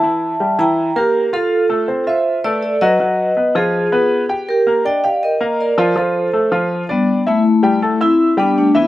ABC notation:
X:1
M:4/4
L:1/8
Q:1/4=162
K:C
V:1 name="Vibraphone"
[ea]3 [g_b]2 [G_B]2 [FA]- | [FA]3 [ce]2 [Bd] [Ad] [B_e]- | [B_e]3 [F_A]4 z | [G_B]2 [_eg] [df] [Be]2 [Bd]2 |
[Ac]4 z [G,B,]2 [A,E]- | [A,E]3 [CE]2 [B,D] [A,D] [B,E] |]
V:2 name="Grand piano"
[E,E]2 [G,G] [E,E]2 [_B,_B]2 [Ff]- | [Ff] [A,A] [Cc] [Fe]2 [A,A]2 [^F,^F] | [^F,^F]2 [_C_c] [=F,=F]2 [Cc]2 [Gg]- | [Gg] [_B,_B] [Dd] [Gg]2 [B,B]2 [F,F] |
[F,F]2 [A,A] [F,F]2 [Dd]2 [Ee] | z [G,Gg] [A,Aa] [Eee']2 [G,Gg]2 [E,Ee] |]